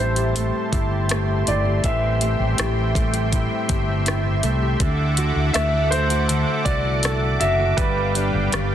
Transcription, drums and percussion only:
0.16 closed hi-hat soft
0.36 closed hi-hat medium
0.73 kick medium
0.73 closed hi-hat medium
1.09 cross-stick medium
1.09 closed hi-hat medium
1.47 closed hi-hat soft
1.84 kick medium
1.84 closed hi-hat medium
2.21 closed hi-hat medium
2.58 cross-stick medium
2.58 closed hi-hat medium
2.95 kick medium
2.95 closed hi-hat medium
3.14 closed hi-hat soft
3.33 kick medium
3.33 closed hi-hat medium
3.69 kick medium
3.69 closed hi-hat medium
4.06 cross-stick medium
4.06 closed hi-hat medium
4.43 closed hi-hat soft
4.80 kick loud
4.80 closed hi-hat medium
5.17 closed hi-hat medium
5.54 cross-stick loud
5.54 closed hi-hat medium
5.92 closed hi-hat medium
6.10 closed hi-hat soft
6.29 closed hi-hat medium
6.66 kick medium
6.66 closed hi-hat medium
7.03 cross-stick medium
7.03 closed hi-hat medium
7.41 closed hi-hat medium
7.78 kick loud
7.78 closed hi-hat medium
8.15 closed hi-hat medium
8.52 cross-stick loud
8.52 closed hi-hat medium

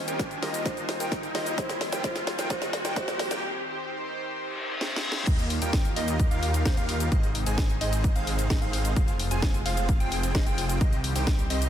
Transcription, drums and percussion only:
0.08 closed hi-hat medium
0.08 shaker medium
0.19 kick loud
0.19 snare medium
0.19 closed hi-hat medium
0.19 shaker medium
0.31 closed hi-hat soft
0.31 shaker soft
0.43 snare medium
0.43 open hi-hat loud
0.54 closed hi-hat medium
0.54 shaker medium
0.66 kick loud
0.66 snare medium
0.66 closed hi-hat medium
0.66 shaker medium
0.77 closed hi-hat soft
0.77 shaker soft
0.89 snare medium
0.89 open hi-hat loud
1.00 closed hi-hat medium
1.00 shaker medium
1.12 kick loud
1.12 snare medium
1.12 closed hi-hat medium
1.12 shaker medium
1.23 closed hi-hat soft
1.23 shaker soft
1.35 snare medium
1.35 open hi-hat loud
1.46 closed hi-hat medium
1.46 shaker medium
1.58 kick loud
1.58 snare medium
1.58 closed hi-hat medium
1.58 shaker medium
1.69 snare medium
1.69 closed hi-hat soft
1.69 shaker soft
1.81 snare medium
1.81 open hi-hat loud
1.92 snare medium
1.92 closed hi-hat medium
1.92 shaker medium
2.04 kick loud
2.04 snare medium
2.04 closed hi-hat medium
2.04 shaker medium
2.16 snare medium
2.16 closed hi-hat soft
2.16 shaker soft
2.27 snare loud
2.27 open hi-hat loud
2.39 snare medium
2.39 closed hi-hat medium
2.39 shaker medium
2.50 kick loud
2.50 snare loud
2.50 closed hi-hat medium
2.50 shaker medium
2.62 snare medium
2.62 closed hi-hat soft
2.62 shaker soft
2.73 snare loud
2.73 open hi-hat loud
2.85 snare medium
2.85 closed hi-hat medium
2.85 shaker medium
2.96 kick loud
2.96 snare loud
2.96 closed hi-hat medium
2.96 shaker medium
3.08 snare medium
3.08 closed hi-hat soft
3.08 shaker soft
3.19 snare loud
3.19 open hi-hat loud
3.31 snare medium
3.31 closed hi-hat medium
3.31 shaker medium
4.81 snare medium
4.96 snare medium
5.12 snare medium
5.27 kick loud
5.27 closed hi-hat medium
5.27 crash loud
5.27 shaker medium
5.39 closed hi-hat soft
5.39 shaker soft
5.50 open hi-hat loud
5.62 closed hi-hat medium
5.62 shaker medium
5.73 kick loud
5.73 snare loud
5.73 closed hi-hat medium
5.73 shaker medium
5.85 closed hi-hat soft
5.85 shaker soft
5.96 open hi-hat loud
6.08 closed hi-hat medium
6.08 shaker medium
6.20 kick loud
6.20 closed hi-hat medium
6.20 shaker medium
6.31 closed hi-hat soft
6.31 shaker soft
6.43 open hi-hat loud
6.54 closed hi-hat medium
6.54 shaker medium
6.66 kick loud
6.66 snare loud
6.66 closed hi-hat medium
6.66 shaker medium
6.77 closed hi-hat soft
6.77 shaker soft
6.89 open hi-hat loud
7.00 closed hi-hat medium
7.00 shaker medium
7.12 kick loud
7.12 closed hi-hat medium
7.12 shaker medium
7.23 closed hi-hat soft
7.23 shaker soft
7.35 open hi-hat loud
7.46 closed hi-hat medium
7.46 shaker medium
7.58 kick loud
7.58 snare loud
7.58 closed hi-hat medium
7.58 shaker medium
7.70 closed hi-hat soft
7.70 shaker soft
7.81 open hi-hat loud
7.93 closed hi-hat medium
7.93 shaker medium
8.04 kick loud
8.04 closed hi-hat medium
8.04 shaker medium
8.16 closed hi-hat soft
8.16 shaker soft
8.27 open hi-hat loud
8.39 closed hi-hat medium
8.39 shaker medium
8.50 kick loud
8.50 snare loud
8.50 closed hi-hat medium
8.50 shaker medium
8.62 closed hi-hat soft
8.62 shaker soft
8.73 open hi-hat loud
8.85 closed hi-hat medium
8.85 shaker medium
8.96 kick loud
8.96 closed hi-hat soft
8.96 shaker medium
9.08 closed hi-hat soft
9.08 shaker soft
9.20 open hi-hat loud
9.31 closed hi-hat medium
9.31 shaker medium
9.42 kick loud
9.42 snare loud
9.42 closed hi-hat medium
9.42 shaker medium
9.54 closed hi-hat soft
9.54 shaker soft
9.66 open hi-hat loud
9.77 closed hi-hat medium
9.77 shaker medium
9.89 kick loud
9.89 closed hi-hat medium
9.89 shaker medium
10.00 closed hi-hat soft
10.00 shaker soft
10.12 open hi-hat loud
10.23 closed hi-hat soft
10.23 shaker medium
10.35 kick loud
10.35 snare loud
10.35 closed hi-hat soft
10.35 shaker medium
10.47 closed hi-hat soft
10.47 shaker soft
10.58 open hi-hat loud
10.70 closed hi-hat medium
10.70 shaker medium
10.81 kick loud
10.81 closed hi-hat soft
10.81 shaker medium
10.93 closed hi-hat soft
10.93 shaker soft
11.04 open hi-hat loud
11.16 open hi-hat medium
11.16 shaker medium
11.27 kick loud
11.27 snare loud
11.27 closed hi-hat medium
11.27 shaker medium
11.39 closed hi-hat soft
11.39 shaker soft
11.50 open hi-hat loud
11.62 closed hi-hat medium
11.62 shaker medium

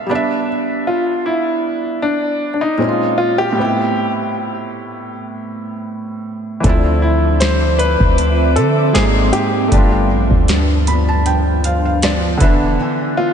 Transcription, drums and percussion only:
6.64 kick loud
6.64 closed hi-hat medium
7.41 snare loud
7.41 closed hi-hat medium
7.79 closed hi-hat medium
8.00 kick medium
8.18 closed hi-hat medium
8.56 closed hi-hat medium
8.95 snare loud
8.95 closed hi-hat medium
9.33 closed hi-hat medium
9.72 kick loud
9.72 closed hi-hat medium
10.31 kick medium
10.48 snare loud
10.48 closed hi-hat medium
10.87 closed hi-hat medium
11.26 closed hi-hat medium
11.64 closed hi-hat medium
12.02 snare loud
12.02 closed hi-hat medium
12.40 kick loud
12.40 closed hi-hat medium

